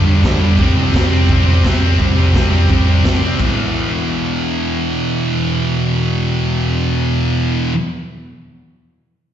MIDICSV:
0, 0, Header, 1, 3, 480
1, 0, Start_track
1, 0, Key_signature, 1, "minor"
1, 0, Tempo, 352319
1, 805, Time_signature, 4, 2, 24, 8
1, 12718, End_track
2, 0, Start_track
2, 0, Title_t, "Distorted electric guitar"
2, 0, Program_c, 0, 30
2, 63, Note_on_c, 0, 55, 96
2, 93, Note_on_c, 0, 50, 83
2, 120, Note_on_c, 0, 43, 72
2, 281, Note_off_c, 0, 43, 0
2, 297, Note_on_c, 0, 43, 70
2, 305, Note_off_c, 0, 50, 0
2, 321, Note_on_c, 0, 50, 78
2, 339, Note_off_c, 0, 55, 0
2, 345, Note_on_c, 0, 55, 80
2, 542, Note_off_c, 0, 55, 0
2, 548, Note_on_c, 0, 55, 75
2, 578, Note_off_c, 0, 50, 0
2, 595, Note_on_c, 0, 50, 63
2, 777, Note_off_c, 0, 43, 0
2, 781, Note_off_c, 0, 50, 0
2, 786, Note_on_c, 0, 48, 95
2, 803, Note_off_c, 0, 55, 0
2, 808, Note_on_c, 0, 55, 101
2, 828, Note_on_c, 0, 60, 94
2, 1023, Note_off_c, 0, 60, 0
2, 1028, Note_on_c, 0, 60, 79
2, 1061, Note_off_c, 0, 55, 0
2, 1067, Note_on_c, 0, 55, 59
2, 1263, Note_off_c, 0, 48, 0
2, 1269, Note_on_c, 0, 48, 69
2, 1280, Note_off_c, 0, 55, 0
2, 1285, Note_on_c, 0, 55, 70
2, 1307, Note_off_c, 0, 60, 0
2, 1312, Note_on_c, 0, 60, 78
2, 1500, Note_off_c, 0, 60, 0
2, 1505, Note_on_c, 0, 60, 85
2, 1523, Note_off_c, 0, 55, 0
2, 1528, Note_on_c, 0, 55, 83
2, 1541, Note_off_c, 0, 48, 0
2, 1547, Note_on_c, 0, 48, 78
2, 1741, Note_off_c, 0, 48, 0
2, 1757, Note_on_c, 0, 48, 76
2, 1774, Note_off_c, 0, 55, 0
2, 1780, Note_on_c, 0, 55, 79
2, 1786, Note_off_c, 0, 60, 0
2, 1802, Note_on_c, 0, 60, 87
2, 1973, Note_off_c, 0, 60, 0
2, 1989, Note_on_c, 0, 60, 91
2, 2013, Note_off_c, 0, 55, 0
2, 2018, Note_on_c, 0, 55, 75
2, 2027, Note_off_c, 0, 48, 0
2, 2044, Note_on_c, 0, 48, 70
2, 2218, Note_off_c, 0, 48, 0
2, 2234, Note_on_c, 0, 48, 70
2, 2251, Note_off_c, 0, 55, 0
2, 2255, Note_off_c, 0, 60, 0
2, 2256, Note_on_c, 0, 55, 72
2, 2272, Note_on_c, 0, 60, 76
2, 2452, Note_off_c, 0, 60, 0
2, 2468, Note_on_c, 0, 60, 82
2, 2510, Note_off_c, 0, 55, 0
2, 2515, Note_on_c, 0, 55, 56
2, 2693, Note_off_c, 0, 48, 0
2, 2705, Note_off_c, 0, 55, 0
2, 2709, Note_on_c, 0, 48, 92
2, 2722, Note_on_c, 0, 55, 101
2, 2736, Note_off_c, 0, 60, 0
2, 2752, Note_on_c, 0, 60, 104
2, 2933, Note_off_c, 0, 60, 0
2, 2950, Note_on_c, 0, 60, 72
2, 2972, Note_off_c, 0, 55, 0
2, 2988, Note_on_c, 0, 55, 60
2, 3163, Note_off_c, 0, 48, 0
2, 3180, Note_off_c, 0, 55, 0
2, 3180, Note_on_c, 0, 48, 65
2, 3196, Note_on_c, 0, 55, 71
2, 3203, Note_off_c, 0, 60, 0
2, 3220, Note_on_c, 0, 60, 71
2, 3402, Note_off_c, 0, 60, 0
2, 3418, Note_on_c, 0, 60, 93
2, 3420, Note_off_c, 0, 55, 0
2, 3436, Note_on_c, 0, 55, 86
2, 3444, Note_off_c, 0, 48, 0
2, 3461, Note_on_c, 0, 48, 72
2, 3642, Note_off_c, 0, 48, 0
2, 3658, Note_on_c, 0, 48, 73
2, 3668, Note_off_c, 0, 55, 0
2, 3682, Note_off_c, 0, 60, 0
2, 3685, Note_on_c, 0, 55, 79
2, 3699, Note_on_c, 0, 60, 79
2, 3880, Note_off_c, 0, 60, 0
2, 3897, Note_on_c, 0, 60, 88
2, 3905, Note_off_c, 0, 55, 0
2, 3922, Note_on_c, 0, 55, 74
2, 3924, Note_off_c, 0, 48, 0
2, 3940, Note_on_c, 0, 48, 71
2, 4130, Note_off_c, 0, 48, 0
2, 4146, Note_on_c, 0, 48, 75
2, 4157, Note_off_c, 0, 55, 0
2, 4172, Note_off_c, 0, 60, 0
2, 4173, Note_on_c, 0, 55, 74
2, 4188, Note_on_c, 0, 60, 77
2, 4369, Note_off_c, 0, 60, 0
2, 4385, Note_on_c, 0, 60, 75
2, 4412, Note_off_c, 0, 55, 0
2, 4428, Note_on_c, 0, 55, 58
2, 4618, Note_off_c, 0, 60, 0
2, 4619, Note_off_c, 0, 48, 0
2, 4630, Note_on_c, 0, 40, 85
2, 4640, Note_off_c, 0, 55, 0
2, 4656, Note_on_c, 0, 47, 99
2, 4684, Note_on_c, 0, 52, 105
2, 10521, Note_off_c, 0, 40, 0
2, 10534, Note_off_c, 0, 47, 0
2, 10548, Note_off_c, 0, 52, 0
2, 12718, End_track
3, 0, Start_track
3, 0, Title_t, "Drums"
3, 91, Note_on_c, 9, 43, 62
3, 228, Note_off_c, 9, 43, 0
3, 322, Note_on_c, 9, 43, 80
3, 326, Note_on_c, 9, 36, 104
3, 340, Note_on_c, 9, 38, 104
3, 459, Note_off_c, 9, 43, 0
3, 462, Note_off_c, 9, 36, 0
3, 476, Note_off_c, 9, 38, 0
3, 562, Note_on_c, 9, 43, 55
3, 698, Note_off_c, 9, 43, 0
3, 802, Note_on_c, 9, 43, 75
3, 803, Note_on_c, 9, 36, 105
3, 938, Note_off_c, 9, 43, 0
3, 939, Note_off_c, 9, 36, 0
3, 1047, Note_on_c, 9, 43, 62
3, 1184, Note_off_c, 9, 43, 0
3, 1283, Note_on_c, 9, 36, 96
3, 1287, Note_on_c, 9, 43, 75
3, 1304, Note_on_c, 9, 38, 105
3, 1419, Note_off_c, 9, 36, 0
3, 1423, Note_off_c, 9, 43, 0
3, 1441, Note_off_c, 9, 38, 0
3, 1527, Note_on_c, 9, 43, 64
3, 1664, Note_off_c, 9, 43, 0
3, 1761, Note_on_c, 9, 36, 112
3, 1762, Note_on_c, 9, 43, 77
3, 1898, Note_off_c, 9, 36, 0
3, 1898, Note_off_c, 9, 43, 0
3, 2001, Note_on_c, 9, 43, 58
3, 2137, Note_off_c, 9, 43, 0
3, 2242, Note_on_c, 9, 36, 106
3, 2243, Note_on_c, 9, 43, 79
3, 2260, Note_on_c, 9, 38, 101
3, 2378, Note_off_c, 9, 36, 0
3, 2379, Note_off_c, 9, 43, 0
3, 2397, Note_off_c, 9, 38, 0
3, 2477, Note_on_c, 9, 43, 55
3, 2613, Note_off_c, 9, 43, 0
3, 2720, Note_on_c, 9, 43, 79
3, 2721, Note_on_c, 9, 36, 97
3, 2856, Note_off_c, 9, 43, 0
3, 2858, Note_off_c, 9, 36, 0
3, 2958, Note_on_c, 9, 43, 62
3, 3094, Note_off_c, 9, 43, 0
3, 3191, Note_on_c, 9, 43, 84
3, 3195, Note_on_c, 9, 36, 99
3, 3209, Note_on_c, 9, 38, 105
3, 3328, Note_off_c, 9, 43, 0
3, 3331, Note_off_c, 9, 36, 0
3, 3345, Note_off_c, 9, 38, 0
3, 3428, Note_on_c, 9, 43, 67
3, 3564, Note_off_c, 9, 43, 0
3, 3669, Note_on_c, 9, 43, 84
3, 3673, Note_on_c, 9, 36, 113
3, 3805, Note_off_c, 9, 43, 0
3, 3809, Note_off_c, 9, 36, 0
3, 3906, Note_on_c, 9, 43, 58
3, 4043, Note_off_c, 9, 43, 0
3, 4143, Note_on_c, 9, 43, 82
3, 4149, Note_on_c, 9, 36, 98
3, 4161, Note_on_c, 9, 38, 105
3, 4279, Note_off_c, 9, 43, 0
3, 4285, Note_off_c, 9, 36, 0
3, 4297, Note_off_c, 9, 38, 0
3, 4388, Note_on_c, 9, 43, 55
3, 4524, Note_off_c, 9, 43, 0
3, 4621, Note_on_c, 9, 49, 81
3, 4627, Note_on_c, 9, 36, 91
3, 4757, Note_off_c, 9, 49, 0
3, 4763, Note_off_c, 9, 36, 0
3, 12718, End_track
0, 0, End_of_file